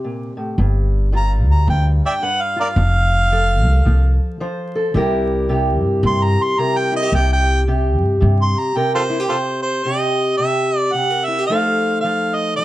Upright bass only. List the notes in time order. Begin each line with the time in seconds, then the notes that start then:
0.58 G1
1.47 D2
1.68 D2
2.76 F1
3.65 C2
3.86 C2
4.94 C2
5.82 G2
6.03 G2
7.12 C2
8.01 G2
8.22 G2